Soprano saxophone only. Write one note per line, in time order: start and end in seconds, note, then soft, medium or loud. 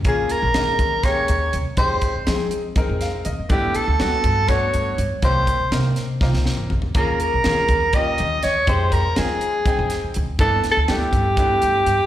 0.08 0.33 G#4 medium
0.31 1.06 A#4 medium
1.04 1.53 C#5 medium
1.78 2.29 C5 medium
3.51 3.77 G4 medium
3.75 4.50 A4 medium
4.48 4.98 C#5 medium
5.24 5.75 C5 medium
6.97 7.19 A#4 medium
7.21 7.96 A#4 medium
7.95 8.45 D#5 medium
8.44 8.70 C#5 medium
8.68 8.94 C5 medium
8.93 9.17 A#4 medium
9.18 10.12 G#4 medium
10.40 10.63 A4 medium
10.72 10.79 A4 medium
10.88 12.06 G4 medium